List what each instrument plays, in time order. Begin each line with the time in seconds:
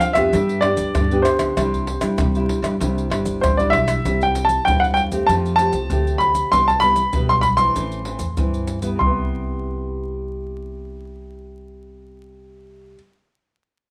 Already playing: nylon-string guitar F3 C4 D4 A4
0.00 grand piano F5, pandeiro, maracas
0.13 upright bass F2, nylon-string guitar B3 D4 G4, grand piano E5, pandeiro, tamborim, maracas, surdo
0.33 upright bass G2, nylon-string guitar G3, pandeiro, maracas, surdo
0.49 pandeiro, maracas
0.61 nylon-string guitar B3 D4 G4, grand piano D5, pandeiro, tamborim
0.77 upright bass G2, pandeiro, maracas, surdo
0.95 upright bass G2, nylon-string guitar D3, pandeiro, tamborim, maracas, surdo
1.11 nylon-string guitar B3 D4 G4, pandeiro, maracas
1.22 grand piano C5, pandeiro, tamborim, maracas
1.39 upright bass C#2, pandeiro, tamborim, maracas, surdo
1.57 upright bass C2, nylon-string guitar C3 G3 D4 E4, pandeiro, tamborim, maracas, surdo
1.74 pandeiro, maracas, surdo
1.87 pandeiro
2.01 upright bass G2, nylon-string guitar G3 D4 E4, pandeiro, tamborim, maracas
2.18 upright bass C3, nylon-string guitar G3, pandeiro, tamborim, maracas, surdo
2.35 nylon-string guitar G3 D4 E4, pandeiro, maracas
2.49 pandeiro, surdo
2.62 upright bass G2, nylon-string guitar G3 D4 E4, pandeiro, tamborim, maracas, surdo
2.80 upright bass C2, nylon-string guitar C3 G3 D4 E4, pandeiro, maracas, surdo
2.98 pandeiro, maracas
3.10 upright bass G1, nylon-string guitar G3 D4 E4, pandeiro, tamborim
3.25 pandeiro, maracas, surdo
3.41 upright bass A1, nylon-string guitar G3, grand piano C5, pandeiro, tamborim, maracas, surdo
3.57 nylon-string guitar G3 D4 E4, grand piano D5, pandeiro, maracas
3.70 upright bass B1, grand piano E5, pandeiro, tamborim
3.88 pandeiro, tamborim, maracas, surdo
4.05 upright bass C2, nylon-string guitar C3 G3 C4 E4, pandeiro, maracas, surdo
4.21 grand piano G5, pandeiro, maracas, surdo
4.35 pandeiro, maracas
4.45 grand piano A5
4.49 pandeiro, maracas
4.65 upright bass E2, nylon-string guitar G2 G3 C4 E4, grand piano G5, pandeiro, maracas, surdo
4.80 grand piano F#5
4.84 pandeiro, maracas
4.94 grand piano G5, pandeiro
5.12 nylon-string guitar A3 C4 G4, pandeiro, maracas, surdo
5.26 upright bass F2, nylon-string guitar F3, grand piano A5, pandeiro, maracas, surdo
5.46 pandeiro, maracas
5.56 nylon-string guitar A3 C4, grand piano A5, pandeiro, maracas
5.60 nylon-string guitar G4
5.72 upright bass C2, pandeiro, maracas, surdo
5.90 upright bass D2, nylon-string guitar C3 A3 C4 G4, pandeiro, maracas, surdo
6.07 pandeiro, maracas
6.18 grand piano B5, pandeiro
6.35 pandeiro, maracas, surdo
6.52 upright bass C2, nylon-string guitar C3 G3 B3 E4, grand piano C6, pandeiro, maracas, surdo
6.68 grand piano A5, pandeiro, maracas, surdo
6.80 nylon-string guitar G3 B3 E4, grand piano B5, pandeiro, maracas
6.96 pandeiro, maracas
7.13 upright bass B1, nylon-string guitar G2 G3 B3 E4, pandeiro, maracas, surdo
7.29 grand piano C6, pandeiro, maracas
7.41 grand piano B5, pandeiro, maracas, surdo
7.57 nylon-string guitar E3 C4 E4, grand piano C6, pandeiro, maracas, surdo
7.75 upright bass A1, nylon-string guitar A2, pandeiro, maracas, surdo
7.92 pandeiro, maracas
8.05 nylon-string guitar E3 C4 E4, pandeiro
8.19 upright bass E2, pandeiro, maracas, surdo
8.37 upright bass G2, nylon-string guitar E3 C4 E4, pandeiro, maracas, surdo
8.54 pandeiro, maracas
8.67 pandeiro, maracas
8.82 nylon-string guitar G3 B3 E4, pandeiro, maracas, surdo
8.95 nylon-string guitar C3, grand piano C6
9.00 upright bass C2, nylon-string guitar G3, surdo
9.06 nylon-string guitar B3
9.10 nylon-string guitar E4